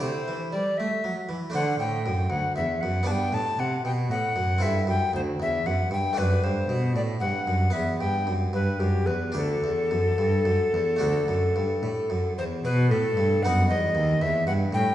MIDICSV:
0, 0, Header, 1, 4, 480
1, 0, Start_track
1, 0, Tempo, 510638
1, 16, Time_signature, 12, 3, 24, 8
1, 3375, Tempo, 517688
1, 7215, Tempo, 533333
1, 8175, Tempo, 549954
1, 11055, Tempo, 524934
1, 13661, End_track
2, 0, Start_track
2, 0, Title_t, "Recorder"
2, 0, Program_c, 0, 74
2, 14, Note_on_c, 0, 72, 94
2, 481, Note_off_c, 0, 72, 0
2, 486, Note_on_c, 0, 74, 88
2, 729, Note_on_c, 0, 76, 98
2, 743, Note_off_c, 0, 74, 0
2, 1200, Note_off_c, 0, 76, 0
2, 1453, Note_on_c, 0, 78, 97
2, 1677, Note_off_c, 0, 78, 0
2, 1685, Note_on_c, 0, 79, 97
2, 2162, Note_on_c, 0, 78, 98
2, 2176, Note_off_c, 0, 79, 0
2, 2402, Note_off_c, 0, 78, 0
2, 2408, Note_on_c, 0, 76, 93
2, 2641, Note_on_c, 0, 78, 94
2, 2655, Note_off_c, 0, 76, 0
2, 2886, Note_on_c, 0, 81, 99
2, 2900, Note_off_c, 0, 78, 0
2, 2929, Note_on_c, 0, 79, 108
2, 2938, Note_off_c, 0, 81, 0
2, 3140, Note_on_c, 0, 81, 104
2, 3154, Note_off_c, 0, 79, 0
2, 3381, Note_on_c, 0, 78, 98
2, 3395, Note_off_c, 0, 81, 0
2, 3614, Note_off_c, 0, 78, 0
2, 3619, Note_on_c, 0, 79, 102
2, 3675, Note_off_c, 0, 79, 0
2, 3854, Note_on_c, 0, 78, 96
2, 4331, Note_on_c, 0, 76, 103
2, 4345, Note_off_c, 0, 78, 0
2, 4569, Note_off_c, 0, 76, 0
2, 4577, Note_on_c, 0, 79, 102
2, 4808, Note_off_c, 0, 79, 0
2, 4824, Note_on_c, 0, 72, 94
2, 4880, Note_off_c, 0, 72, 0
2, 5070, Note_on_c, 0, 76, 101
2, 5299, Note_on_c, 0, 78, 99
2, 5313, Note_off_c, 0, 76, 0
2, 5531, Note_off_c, 0, 78, 0
2, 5543, Note_on_c, 0, 79, 96
2, 5777, Note_on_c, 0, 71, 106
2, 5791, Note_off_c, 0, 79, 0
2, 6016, Note_on_c, 0, 72, 89
2, 6030, Note_off_c, 0, 71, 0
2, 6487, Note_off_c, 0, 72, 0
2, 6493, Note_on_c, 0, 74, 94
2, 6549, Note_off_c, 0, 74, 0
2, 6722, Note_on_c, 0, 78, 98
2, 7211, Note_on_c, 0, 76, 98
2, 7224, Note_off_c, 0, 78, 0
2, 7443, Note_off_c, 0, 76, 0
2, 7449, Note_on_c, 0, 79, 100
2, 7757, Note_off_c, 0, 79, 0
2, 7942, Note_on_c, 0, 71, 88
2, 8173, Note_on_c, 0, 67, 84
2, 8186, Note_off_c, 0, 71, 0
2, 8406, Note_on_c, 0, 71, 86
2, 8419, Note_off_c, 0, 67, 0
2, 8651, Note_off_c, 0, 71, 0
2, 8661, Note_on_c, 0, 69, 95
2, 11272, Note_off_c, 0, 69, 0
2, 11312, Note_on_c, 0, 72, 99
2, 11367, Note_off_c, 0, 72, 0
2, 11556, Note_on_c, 0, 71, 99
2, 11781, Note_off_c, 0, 71, 0
2, 11787, Note_on_c, 0, 69, 110
2, 12270, Note_on_c, 0, 78, 112
2, 12284, Note_off_c, 0, 69, 0
2, 12506, Note_off_c, 0, 78, 0
2, 12512, Note_on_c, 0, 75, 114
2, 12994, Note_on_c, 0, 76, 111
2, 13008, Note_off_c, 0, 75, 0
2, 13218, Note_off_c, 0, 76, 0
2, 13224, Note_on_c, 0, 78, 107
2, 13279, Note_off_c, 0, 78, 0
2, 13470, Note_on_c, 0, 79, 114
2, 13661, Note_off_c, 0, 79, 0
2, 13661, End_track
3, 0, Start_track
3, 0, Title_t, "Harpsichord"
3, 0, Program_c, 1, 6
3, 0, Note_on_c, 1, 57, 49
3, 0, Note_on_c, 1, 64, 49
3, 2, Note_on_c, 1, 67, 51
3, 23, Note_on_c, 1, 48, 57
3, 237, Note_off_c, 1, 48, 0
3, 262, Note_on_c, 1, 52, 55
3, 477, Note_off_c, 1, 52, 0
3, 494, Note_on_c, 1, 55, 53
3, 712, Note_off_c, 1, 55, 0
3, 738, Note_off_c, 1, 57, 0
3, 750, Note_on_c, 1, 57, 55
3, 960, Note_off_c, 1, 57, 0
3, 979, Note_on_c, 1, 54, 54
3, 1193, Note_off_c, 1, 54, 0
3, 1211, Note_on_c, 1, 52, 58
3, 1405, Note_off_c, 1, 64, 0
3, 1409, Note_on_c, 1, 57, 53
3, 1411, Note_off_c, 1, 67, 0
3, 1421, Note_on_c, 1, 62, 50
3, 1428, Note_off_c, 1, 52, 0
3, 1440, Note_on_c, 1, 72, 53
3, 1458, Note_on_c, 1, 50, 57
3, 1672, Note_off_c, 1, 50, 0
3, 1694, Note_on_c, 1, 45, 54
3, 1910, Note_off_c, 1, 45, 0
3, 1934, Note_on_c, 1, 42, 54
3, 2149, Note_off_c, 1, 42, 0
3, 2161, Note_on_c, 1, 38, 57
3, 2360, Note_off_c, 1, 57, 0
3, 2382, Note_off_c, 1, 38, 0
3, 2405, Note_on_c, 1, 40, 57
3, 2626, Note_off_c, 1, 40, 0
3, 2660, Note_on_c, 1, 42, 57
3, 2841, Note_off_c, 1, 62, 0
3, 2848, Note_on_c, 1, 59, 52
3, 2850, Note_off_c, 1, 72, 0
3, 2859, Note_on_c, 1, 62, 58
3, 2874, Note_on_c, 1, 71, 53
3, 2875, Note_off_c, 1, 42, 0
3, 2887, Note_on_c, 1, 43, 62
3, 3104, Note_off_c, 1, 59, 0
3, 3107, Note_off_c, 1, 43, 0
3, 3110, Note_off_c, 1, 62, 0
3, 3125, Note_on_c, 1, 45, 61
3, 3346, Note_off_c, 1, 45, 0
3, 3374, Note_on_c, 1, 48, 60
3, 3589, Note_off_c, 1, 48, 0
3, 3616, Note_on_c, 1, 47, 56
3, 3831, Note_off_c, 1, 47, 0
3, 3859, Note_on_c, 1, 45, 62
3, 4071, Note_off_c, 1, 45, 0
3, 4087, Note_on_c, 1, 42, 64
3, 4283, Note_off_c, 1, 71, 0
3, 4294, Note_on_c, 1, 60, 54
3, 4304, Note_off_c, 1, 42, 0
3, 4311, Note_on_c, 1, 64, 54
3, 4324, Note_on_c, 1, 69, 51
3, 4337, Note_on_c, 1, 43, 59
3, 4543, Note_off_c, 1, 60, 0
3, 4549, Note_off_c, 1, 43, 0
3, 4564, Note_on_c, 1, 42, 61
3, 4782, Note_off_c, 1, 42, 0
3, 4807, Note_on_c, 1, 38, 58
3, 5023, Note_off_c, 1, 38, 0
3, 5050, Note_on_c, 1, 40, 60
3, 5264, Note_off_c, 1, 40, 0
3, 5295, Note_on_c, 1, 42, 61
3, 5506, Note_off_c, 1, 42, 0
3, 5526, Note_on_c, 1, 43, 60
3, 5718, Note_off_c, 1, 64, 0
3, 5724, Note_off_c, 1, 69, 0
3, 5730, Note_on_c, 1, 57, 56
3, 5741, Note_off_c, 1, 43, 0
3, 5742, Note_on_c, 1, 62, 57
3, 5762, Note_on_c, 1, 69, 60
3, 5776, Note_on_c, 1, 42, 61
3, 5980, Note_off_c, 1, 57, 0
3, 5987, Note_off_c, 1, 42, 0
3, 6014, Note_on_c, 1, 43, 63
3, 6228, Note_off_c, 1, 43, 0
3, 6251, Note_on_c, 1, 47, 61
3, 6467, Note_off_c, 1, 47, 0
3, 6498, Note_on_c, 1, 45, 60
3, 6711, Note_off_c, 1, 45, 0
3, 6736, Note_on_c, 1, 43, 58
3, 6951, Note_off_c, 1, 43, 0
3, 6976, Note_on_c, 1, 42, 60
3, 7166, Note_off_c, 1, 62, 0
3, 7176, Note_off_c, 1, 69, 0
3, 7188, Note_on_c, 1, 59, 50
3, 7192, Note_off_c, 1, 42, 0
3, 7198, Note_on_c, 1, 71, 54
3, 7218, Note_on_c, 1, 40, 58
3, 7431, Note_off_c, 1, 40, 0
3, 7462, Note_on_c, 1, 43, 57
3, 7665, Note_off_c, 1, 59, 0
3, 7674, Note_off_c, 1, 43, 0
3, 7700, Note_on_c, 1, 42, 61
3, 7913, Note_off_c, 1, 42, 0
3, 7936, Note_on_c, 1, 43, 59
3, 8152, Note_off_c, 1, 43, 0
3, 8179, Note_on_c, 1, 42, 57
3, 8391, Note_off_c, 1, 42, 0
3, 8415, Note_on_c, 1, 40, 56
3, 8611, Note_off_c, 1, 71, 0
3, 8630, Note_on_c, 1, 62, 51
3, 8631, Note_off_c, 1, 40, 0
3, 8647, Note_on_c, 1, 67, 54
3, 8656, Note_on_c, 1, 38, 58
3, 8874, Note_off_c, 1, 38, 0
3, 8908, Note_on_c, 1, 40, 59
3, 9122, Note_off_c, 1, 40, 0
3, 9146, Note_on_c, 1, 42, 56
3, 9360, Note_off_c, 1, 42, 0
3, 9383, Note_on_c, 1, 43, 55
3, 9597, Note_off_c, 1, 43, 0
3, 9620, Note_on_c, 1, 42, 57
3, 9836, Note_off_c, 1, 42, 0
3, 9871, Note_on_c, 1, 40, 59
3, 10053, Note_off_c, 1, 62, 0
3, 10062, Note_off_c, 1, 67, 0
3, 10064, Note_on_c, 1, 57, 51
3, 10082, Note_off_c, 1, 40, 0
3, 10082, Note_on_c, 1, 62, 49
3, 10094, Note_on_c, 1, 66, 51
3, 10107, Note_on_c, 1, 38, 54
3, 10319, Note_off_c, 1, 38, 0
3, 10343, Note_on_c, 1, 42, 57
3, 10546, Note_off_c, 1, 57, 0
3, 10557, Note_off_c, 1, 42, 0
3, 10584, Note_on_c, 1, 43, 55
3, 10797, Note_off_c, 1, 43, 0
3, 10820, Note_on_c, 1, 45, 55
3, 11033, Note_off_c, 1, 45, 0
3, 11056, Note_on_c, 1, 42, 56
3, 11280, Note_off_c, 1, 42, 0
3, 11321, Note_on_c, 1, 40, 57
3, 11500, Note_off_c, 1, 62, 0
3, 11507, Note_off_c, 1, 66, 0
3, 11531, Note_off_c, 1, 40, 0
3, 11560, Note_on_c, 1, 47, 75
3, 11768, Note_off_c, 1, 47, 0
3, 11801, Note_on_c, 1, 45, 76
3, 12009, Note_off_c, 1, 45, 0
3, 12036, Note_on_c, 1, 43, 73
3, 12247, Note_off_c, 1, 43, 0
3, 12286, Note_on_c, 1, 59, 57
3, 12288, Note_on_c, 1, 42, 69
3, 12293, Note_on_c, 1, 63, 57
3, 12294, Note_on_c, 1, 66, 65
3, 12495, Note_off_c, 1, 42, 0
3, 12526, Note_on_c, 1, 40, 71
3, 12733, Note_off_c, 1, 40, 0
3, 12747, Note_on_c, 1, 39, 75
3, 12796, Note_off_c, 1, 59, 0
3, 12800, Note_off_c, 1, 63, 0
3, 12801, Note_off_c, 1, 66, 0
3, 12959, Note_off_c, 1, 39, 0
3, 12990, Note_on_c, 1, 40, 73
3, 13200, Note_off_c, 1, 40, 0
3, 13224, Note_on_c, 1, 43, 73
3, 13436, Note_off_c, 1, 43, 0
3, 13457, Note_on_c, 1, 45, 66
3, 13661, Note_off_c, 1, 45, 0
3, 13661, End_track
4, 0, Start_track
4, 0, Title_t, "Cello"
4, 0, Program_c, 2, 42
4, 18, Note_on_c, 2, 48, 71
4, 93, Note_off_c, 2, 48, 0
4, 255, Note_on_c, 2, 52, 66
4, 502, Note_on_c, 2, 55, 64
4, 516, Note_off_c, 2, 52, 0
4, 740, Note_off_c, 2, 55, 0
4, 747, Note_on_c, 2, 57, 72
4, 822, Note_off_c, 2, 57, 0
4, 992, Note_on_c, 2, 54, 59
4, 1067, Note_off_c, 2, 54, 0
4, 1219, Note_on_c, 2, 52, 62
4, 1294, Note_off_c, 2, 52, 0
4, 1451, Note_on_c, 2, 50, 75
4, 1686, Note_off_c, 2, 50, 0
4, 1691, Note_on_c, 2, 45, 67
4, 1939, Note_on_c, 2, 42, 69
4, 1953, Note_off_c, 2, 45, 0
4, 2171, Note_off_c, 2, 42, 0
4, 2177, Note_on_c, 2, 38, 77
4, 2252, Note_off_c, 2, 38, 0
4, 2408, Note_on_c, 2, 40, 71
4, 2647, Note_off_c, 2, 40, 0
4, 2653, Note_on_c, 2, 42, 73
4, 2884, Note_off_c, 2, 42, 0
4, 2890, Note_on_c, 2, 43, 80
4, 2965, Note_off_c, 2, 43, 0
4, 3128, Note_on_c, 2, 45, 70
4, 3203, Note_off_c, 2, 45, 0
4, 3363, Note_on_c, 2, 48, 70
4, 3600, Note_off_c, 2, 48, 0
4, 3606, Note_on_c, 2, 47, 73
4, 3840, Note_on_c, 2, 45, 67
4, 3854, Note_off_c, 2, 47, 0
4, 4080, Note_off_c, 2, 45, 0
4, 4085, Note_on_c, 2, 42, 72
4, 4321, Note_on_c, 2, 43, 79
4, 4335, Note_off_c, 2, 42, 0
4, 4562, Note_off_c, 2, 43, 0
4, 4567, Note_on_c, 2, 42, 68
4, 4641, Note_off_c, 2, 42, 0
4, 4807, Note_on_c, 2, 38, 72
4, 5042, Note_off_c, 2, 38, 0
4, 5049, Note_on_c, 2, 40, 76
4, 5277, Note_off_c, 2, 40, 0
4, 5283, Note_on_c, 2, 42, 74
4, 5357, Note_off_c, 2, 42, 0
4, 5525, Note_on_c, 2, 43, 75
4, 5599, Note_off_c, 2, 43, 0
4, 5767, Note_on_c, 2, 42, 85
4, 6002, Note_off_c, 2, 42, 0
4, 6009, Note_on_c, 2, 43, 72
4, 6234, Note_off_c, 2, 43, 0
4, 6240, Note_on_c, 2, 47, 75
4, 6492, Note_on_c, 2, 45, 76
4, 6506, Note_off_c, 2, 47, 0
4, 6718, Note_off_c, 2, 45, 0
4, 6724, Note_on_c, 2, 43, 64
4, 6798, Note_off_c, 2, 43, 0
4, 6967, Note_on_c, 2, 42, 72
4, 7207, Note_off_c, 2, 42, 0
4, 7213, Note_on_c, 2, 40, 73
4, 7285, Note_off_c, 2, 40, 0
4, 7448, Note_on_c, 2, 43, 71
4, 7690, Note_on_c, 2, 42, 65
4, 7703, Note_off_c, 2, 43, 0
4, 7922, Note_off_c, 2, 42, 0
4, 7927, Note_on_c, 2, 43, 78
4, 8167, Note_off_c, 2, 43, 0
4, 8180, Note_on_c, 2, 42, 71
4, 8418, Note_on_c, 2, 40, 70
4, 8431, Note_off_c, 2, 42, 0
4, 8650, Note_on_c, 2, 38, 78
4, 8663, Note_off_c, 2, 40, 0
4, 8890, Note_off_c, 2, 38, 0
4, 8895, Note_on_c, 2, 40, 70
4, 9146, Note_on_c, 2, 42, 71
4, 9159, Note_off_c, 2, 40, 0
4, 9375, Note_off_c, 2, 42, 0
4, 9381, Note_on_c, 2, 43, 70
4, 9615, Note_off_c, 2, 43, 0
4, 9622, Note_on_c, 2, 42, 67
4, 9692, Note_off_c, 2, 42, 0
4, 9856, Note_on_c, 2, 40, 67
4, 9925, Note_off_c, 2, 40, 0
4, 10105, Note_on_c, 2, 38, 75
4, 10331, Note_off_c, 2, 38, 0
4, 10336, Note_on_c, 2, 42, 67
4, 10572, Note_off_c, 2, 42, 0
4, 10584, Note_on_c, 2, 43, 63
4, 10654, Note_off_c, 2, 43, 0
4, 10818, Note_on_c, 2, 45, 73
4, 10887, Note_off_c, 2, 45, 0
4, 11063, Note_on_c, 2, 42, 69
4, 11136, Note_off_c, 2, 42, 0
4, 11310, Note_on_c, 2, 40, 74
4, 11545, Note_off_c, 2, 40, 0
4, 11560, Note_on_c, 2, 47, 101
4, 11791, Note_on_c, 2, 45, 88
4, 11805, Note_off_c, 2, 47, 0
4, 12015, Note_off_c, 2, 45, 0
4, 12020, Note_on_c, 2, 43, 90
4, 12270, Note_on_c, 2, 42, 86
4, 12283, Note_off_c, 2, 43, 0
4, 12516, Note_on_c, 2, 40, 79
4, 12529, Note_off_c, 2, 42, 0
4, 12751, Note_off_c, 2, 40, 0
4, 12757, Note_on_c, 2, 39, 89
4, 12984, Note_off_c, 2, 39, 0
4, 12997, Note_on_c, 2, 40, 89
4, 13222, Note_off_c, 2, 40, 0
4, 13230, Note_on_c, 2, 43, 83
4, 13458, Note_off_c, 2, 43, 0
4, 13468, Note_on_c, 2, 45, 80
4, 13661, Note_off_c, 2, 45, 0
4, 13661, End_track
0, 0, End_of_file